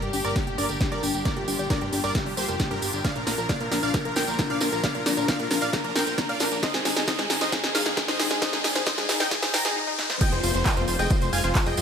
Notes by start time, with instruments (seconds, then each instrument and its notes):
Already playing: string section A#2 D3 G3 D4 G4, riser
0.02 analog synth bass G2, supersaw synth G4, synth pluck A#4, grand piano G5, closed hi-hat
0.13 analog synth bass G1, synth pluck D4, supersaw synth G4, grand piano G5, open hi-hat, tambourine
0.24 analog synth bass G1, supersaw synth A#4 D5, synth pluck D5, grand piano D6, closed hi-hat, tambourine
0.36 synth pluck D4, supersaw synth G4, grand piano G5, kick, snare, closed hi-hat, tambourine
0.47 analog synth bass G1, supersaw synth G4, grand piano G5, synth pluck G5, closed hi-hat
0.58 analog synth bass G1, synth pluck D4, supersaw synth A#4 D5, grand piano D6, open hi-hat, tambourine
0.69 analog synth bass G1, supersaw synth G4, synth pluck A#4, grand piano G5, closed hi-hat, tambourine
0.80 synth pluck D4, supersaw synth G4, grand piano G5, kick, snare, closed hi-hat, tambourine
0.92 analog synth bass G1, supersaw synth A#4 D5, synth pluck D5, grand piano D6, closed hi-hat
1.03 analog synth bass G1, synth pluck D4, supersaw synth G4, grand piano G5, open hi-hat, tambourine
1.13 analog synth bass G1, supersaw synth G4, synth pluck G5, grand piano G5, closed hi-hat, tambourine
1.25 synth pluck D4, string section F4, supersaw synth A#4 D5, grand piano D6, kick, snare, closed hi-hat
1.37 analog synth bass G1, supersaw synth G4, synth pluck A#4, grand piano G5, closed hi-hat
1.48 analog synth bass G1, synth pluck D4, supersaw synth G4, grand piano G5, open hi-hat, tambourine
1.59 analog synth bass G1, supersaw synth G4, synth pluck D5, grand piano G5, closed hi-hat, tambourine
1.70 synth pluck D4, supersaw synth A#4 D5, grand piano D6, kick, snare, closed hi-hat, tambourine
1.81 analog synth bass G2, supersaw synth G4, grand piano G5, synth pluck G5, closed hi-hat
1.92 analog synth bass G1, synth pluck D4, supersaw synth G4, grand piano G5, open hi-hat, tambourine
2.04 analog synth bass G1, supersaw synth A#4 D5, synth pluck A#4, grand piano D6, closed hi-hat, tambourine
2.15 synth pluck D4, supersaw synth G4, grand piano G5, kick, snare, closed hi-hat
2.26 analog synth bass G1, supersaw synth G4, synth pluck D5, grand piano G5, open hi-hat
2.37 analog synth bass G1, supersaw synth G4 C5, synth pluck A#4, grand piano C6, open hi-hat, tambourine
2.48 analog synth bass F1, supersaw synth G4, synth pluck A#4, grand piano G5, closed hi-hat, tambourine
2.59 synth pluck D4, supersaw synth G4, kick, snare, closed hi-hat, tambourine
2.71 analog synth bass G2, synth pluck D4, supersaw synth G4 A#4, grand piano A#5, closed hi-hat
2.82 analog synth bass G1, supersaw synth G4, synth pluck G4, grand piano G5, open hi-hat, tambourine
2.93 analog synth bass G1, supersaw synth G4, grand piano G5, synth pluck G5, closed hi-hat, tambourine
3.04 string section A#2 D3 F3, synth pluck D4, supersaw synth D5 F5, grand piano F6, kick, snare, closed hi-hat, tambourine
3.16 analog synth bass A#1, synth pluck D4, supersaw synth A#4, grand piano A#5, closed hi-hat
3.27 analog synth bass A#1, synth pluck D4, supersaw synth A#4, grand piano A#5, snare, open hi-hat, tambourine
3.38 analog synth bass A#1, supersaw synth A#4, synth pluck A#4, grand piano A#5, closed hi-hat, tambourine
3.49 synth pluck D4, supersaw synth D5 F5, grand piano F6, kick, snare, closed hi-hat, tambourine
3.60 analog synth bass A#2, supersaw synth A#4, synth pluck D5, grand piano A#5, closed hi-hat
3.72 analog synth bass A#1, synth pluck D4, supersaw synth A#4, grand piano A#5, snare, open hi-hat, tambourine
3.83 analog synth bass A#1, synth pluck D4, supersaw synth D5 F5, grand piano F6, closed hi-hat, tambourine
3.94 synth pluck D4, supersaw synth A#4, grand piano A#5, kick, snare, closed hi-hat, tambourine
4.05 analog synth bass A#1, synth pluck A#4, supersaw synth A#4, grand piano A#5, closed hi-hat
4.16 analog synth bass A#1, synth pluck D4, supersaw synth A#4 G5, grand piano G6, snare, open hi-hat, tambourine
4.28 analog synth bass A#1, supersaw synth A#4, synth pluck D5, grand piano A#5, closed hi-hat, tambourine
4.38 synth pluck D4, supersaw synth A#4, kick, snare, closed hi-hat, tambourine
4.50 analog synth bass A#1, synth pluck D4, supersaw synth D5 F5, grand piano F6, closed hi-hat
4.61 analog synth bass A#1, synth pluck D4, supersaw synth A#4, grand piano A#5, snare, open hi-hat, tambourine
4.72 analog synth bass A#1, synth pluck A#4, supersaw synth A#4, grand piano A#5, closed hi-hat, tambourine
4.83 synth pluck D4, supersaw synth D5 F5, grand piano F6, kick, snare, closed hi-hat, tambourine
4.95 analog synth bass A#1, supersaw synth A#4, synth pluck D5, grand piano A#5, closed hi-hat
5.06 analog synth bass A#1, synth pluck D4, supersaw synth A#4, grand piano A#5, snare, open hi-hat, tambourine
5.17 analog synth bass A#1, synth pluck D4, supersaw synth A#4, grand piano A#5, closed hi-hat, tambourine
5.28 synth pluck D4, supersaw synth D5 F5, grand piano F6, kick, snare, closed hi-hat, tambourine
5.39 analog synth bass A#2, synth pluck A#4, supersaw synth A#4, grand piano A#5, closed hi-hat
5.50 analog synth bass A#1, synth pluck D4, supersaw synth A#4, grand piano A#5, snare, open hi-hat, tambourine
5.61 analog synth bass A#1, supersaw synth D5 F5, synth pluck D5, grand piano F6, closed hi-hat, tambourine
5.73 synth pluck D4, supersaw synth A#4, grand piano A#5, kick, snare, closed hi-hat, tambourine
5.84 analog synth bass A#1, synth pluck D4, supersaw synth A#4, grand piano A#5, closed hi-hat
5.96 analog synth bass A#1, synth pluck D4, supersaw synth A#4 G5, grand piano G6, snare, open hi-hat, tambourine
6.06 analog synth bass A#1, supersaw synth A#4, synth pluck A#4, grand piano A#5, closed hi-hat, tambourine
6.18 synth pluck D4, supersaw synth A#4, grand piano A#5, kick, snare, closed hi-hat, tambourine
6.29 analog synth bass A#1, supersaw synth D5 F5, synth pluck D5, grand piano F6, closed hi-hat
6.40 analog synth bass A#1, synth pluck D4, supersaw synth A#4, grand piano A#5, snare, open hi-hat, tambourine
6.51 analog synth bass A#1, synth pluck D4, supersaw synth A#4, grand piano A#5, closed hi-hat, tambourine
6.63 string section G#2 C3 D#3 C4 D#4, synth pluck D#4, supersaw synth C5 D#5, grand piano D#6, kick, snare, closed hi-hat, tambourine
6.74 analog synth bass G#1, supersaw synth G#4, synth pluck C5, grand piano G#5, snare, closed hi-hat
6.85 analog synth bass G#1, synth pluck D#4, supersaw synth G#4, grand piano G#5, snare, open hi-hat, tambourine
6.96 analog synth bass G#1, supersaw synth G#4, synth pluck D#5, grand piano G#5, snare, closed hi-hat, tambourine
7.07 synth pluck D#4, supersaw synth C5 D#5, grand piano D#6, kick, snare, closed hi-hat, tambourine
7.19 analog synth bass G#2, synth pluck D#4, supersaw synth G#4, grand piano G#5, snare, closed hi-hat
7.30 analog synth bass G#1, synth pluck D#4, supersaw synth G#4, grand piano G#5, snare, open hi-hat, tambourine
7.41 analog synth bass G#1, synth pluck C5, supersaw synth C5 D#5, grand piano D#6, snare, closed hi-hat, tambourine
7.52 synth pluck D#4, supersaw synth G#4, grand piano G#5, kick, snare, closed hi-hat, tambourine
7.63 analog synth bass G#1, supersaw synth G#4, synth pluck D#5, grand piano G#5, snare, closed hi-hat
7.75 analog synth bass G#1, synth pluck D#4, supersaw synth G#4 F5, grand piano F6, snare, open hi-hat, tambourine
7.86 analog synth bass G#1, synth pluck D#4, supersaw synth G#4, grand piano G#5, snare, closed hi-hat, tambourine
7.97 synth pluck D#4, supersaw synth G#4, grand piano G#5, kick, snare, closed hi-hat, tambourine
8.08 analog synth bass G#1, synth pluck C5, supersaw synth C5 D#5, grand piano D#6, snare, closed hi-hat
8.19 analog synth bass G#1, synth pluck D#4, supersaw synth G#4, grand piano G#5, snare, open hi-hat, tambourine
8.30 analog synth bass G#1, supersaw synth G#4, synth pluck D#5, grand piano G#5, snare, closed hi-hat, tambourine
8.42 string section D4, synth pluck D#4, supersaw synth C5 D#5, grand piano D#6, kick, snare, closed hi-hat, tambourine
8.53 analog synth bass G#1, synth pluck D#4, supersaw synth G#4, grand piano G#5, snare, closed hi-hat
8.64 analog synth bass G#1, synth pluck D#4, supersaw synth G#4, grand piano G#5, snare, open hi-hat, tambourine
8.75 analog synth bass G#1, supersaw synth G#4, synth pluck C5, grand piano G#5, snare, closed hi-hat, tambourine
8.86 synth pluck D#4, supersaw synth C5 D#5, grand piano D#6, kick, snare, closed hi-hat, tambourine
8.98 analog synth bass G#2, supersaw synth G#4, synth pluck D#5, grand piano G#5, snare, closed hi-hat
9.09 analog synth bass G#1, synth pluck D#4, supersaw synth G#4, grand piano G#5, snare, open hi-hat, tambourine
9.20 analog synth bass G#1, synth pluck D#4, supersaw synth D#5 G5, grand piano G6, snare, closed hi-hat, tambourine
9.31 synth pluck D#4, supersaw synth G#4, grand piano G#5, kick, snare, closed hi-hat, tambourine
9.43 analog synth bass G#1, supersaw synth G#4, synth pluck C5, grand piano G#5, snare, open hi-hat
9.54 analog synth bass G#1, synth pluck D#4, supersaw synth G5 A#5, grand piano A#6, snare, open hi-hat, tambourine
9.65 analog synth bass G#1, supersaw synth G#4, synth pluck D#5, grand piano G#5, snare, closed hi-hat, tambourine
9.76 synth pluck D#4
9.87 synth pluck D#4
9.98 synth pluck D#4, snare
10.10 synth pluck C5, snare
10.21 string section C3 F3 G3 G#3 F4, synth pluck F4, supersaw synth D#5 G5, grand piano G6, kick, closed hi-hat, crash, tambourine, downlifter
10.32 analog synth bass F1, synth pluck G#4, supersaw synth C5, grand piano C6, closed hi-hat
10.43 analog synth bass F1, synth pluck F4, supersaw synth C5, grand piano C6, open hi-hat, tambourine
10.54 analog synth bass F1, supersaw synth C5, synth pluck C5, grand piano C6, closed hi-hat, tambourine
10.66 synth pluck F4, supersaw synth D#5 G5, grand piano G6, kick, clap, closed hi-hat, tambourine
10.77 analog synth bass F2, synth pluck F4, supersaw synth C5, grand piano C6, closed hi-hat
10.88 analog synth bass F1, synth pluck F4, supersaw synth C5, grand piano C6, open hi-hat, tambourine
10.99 analog synth bass F1, synth pluck G#4, supersaw synth D#5 G5, grand piano G6, closed hi-hat, tambourine
11.10 synth pluck F4, supersaw synth C5, grand piano C6, kick, closed hi-hat, tambourine
11.22 analog synth bass F1, synth pluck C5, supersaw synth C5, grand piano C6, closed hi-hat, tambourine
11.33 analog synth bass F1, synth pluck F4, supersaw synth F5 G#5, grand piano G#6, open hi-hat, tambourine
11.44 analog synth bass F1, synth pluck F4, supersaw synth C5, grand piano C6, closed hi-hat, tambourine
11.55 synth pluck F4, supersaw synth C5, grand piano C6, kick, clap, closed hi-hat, tambourine
11.66 analog synth bass F1, synth pluck G#4, supersaw synth D#5 G5, grand piano G6, closed hi-hat
11.77 analog synth bass F1, synth pluck F4, supersaw synth C5, grand piano C6, open hi-hat, tambourine